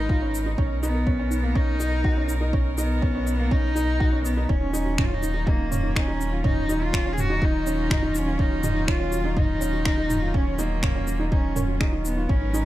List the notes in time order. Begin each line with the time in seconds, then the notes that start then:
Already playing: G#1 F#3 G#3 D#4 A#4 B4
0.09 F4 F#4, kick, mid tom
0.22 C#4 D#5
0.35 shaker
0.46 D#4
0.57 B1 B3 C#4 A#4 D#5, kick
0.82 B3 D#4, mid tom, shaker
0.94 A#4
1.06 C#4 D#5, kick
1.19 C#4
1.30 D#4, shaker
1.43 A#3 A#4
1.55 C#4 D#4 D#5, kick, mid tom
1.80 D#4, shaker
1.92 A#4
2.04 F#4 D#5, kick
2.17 C#4
2.28 D#4, mid tom, shaker
2.40 D#4 A#4
2.53 C#4 D#5, kick
2.78 B3 D#4 D#5, shaker
3.02 C#4 D#5, kick, mid tom
3.15 C#4
3.26 D#5, shaker
3.39 A#3
3.51 C#4 D#4 D#5, kick
3.75 D#4 D#5, mid tom, shaker
4.00 F#4 D#5, kick
4.12 C#4
4.25 B3 D#5, shaker
4.37 D#4
4.49 D#1 D#3 F#3 A#3 C#4 D#4 F4, kick
4.61 D#4
4.73 D#4, shaker
4.86 F#4
4.98 C#4 D#4, finger snap, kick, mid tom
5.05 F4
5.10 C#4 D#4
5.14 D#4
5.22 D#4, shaker
5.34 D#4
5.47 A#3 D#4 F#4, kick
5.59 C#4
5.71 C#4 D#4, mid tom, shaker
5.83 D#4
5.96 C#4 D#4, finger snap, kick
6.08 D#4 F#4
6.20 C#4, shaker
6.32 D#4 F4
6.44 C#4 D#4, kick, mid tom
6.69 D#4 F#4, shaker
6.81 C#4 F4
6.93 C#4 D#4, finger snap, kick
7.05 C#4 D#4
7.12 G#4
7.18 F#4, mid tom, shaker
7.30 D#4 F#4
7.42 C#4 D#4, kick
7.54 D#4
7.66 C#4 D#4, shaker
7.90 D#4 F#4, finger snap, kick, mid tom
8.02 C#4 D#4
8.15 C#4 D#4, shaker
8.26 D#4 F4
8.39 C#4 D#4, kick
8.51 F#4
8.63 C#4 D#4, mid tom, shaker
8.75 D#4
8.87 C#4 D#4 F4, finger snap, kick
9.00 C#4
9.12 F#4, shaker
9.24 C#4 D#4
9.36 D#4, kick, mid tom
9.49 D#4
9.61 C#4, shaker
9.73 F#4
9.85 C#4 D#4, finger snap, kick
9.98 D#4
10.10 D#4, mid tom, shaker
10.22 F4
10.34 C#4 F#4, kick
10.47 C#4
10.59 A#3 D#4, shaker
10.71 D#4
10.83 C#4, finger snap, kick, mid tom
10.95 C#4 F#4
11.07 C#4, shaker
11.19 D#4
11.32 C#4 D#4, kick
11.56 C#4 A#4, mid tom, shaker
11.68 F#4
11.80 D#4 G#4, finger snap, kick
11.92 D#4
12.05 B3 D#4, shaker
12.17 D#4 F4
12.29 G#1 G#3 C#4 D#4 A#4 B4, kick
12.41 D#4
12.53 D#4, shaker